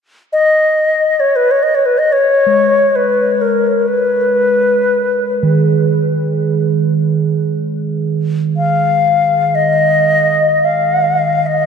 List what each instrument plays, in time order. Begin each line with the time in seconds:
0.33 xiao D#5
1.20 xiao C#5
1.36 xiao B4
1.51 xiao C#5
1.63 xiao D#5
1.75 xiao C#5
1.86 xiao B4
1.98 xiao D#5
2.12 xiao C#5
2.46 singing bowl G#3
2.96 xiao B4
3.41 xiao A#4
3.88 xiao B4
5.43 singing bowl D#3
8.57 xiao F5
9.55 xiao D#5
10.65 xiao F5
11.47 xiao D#5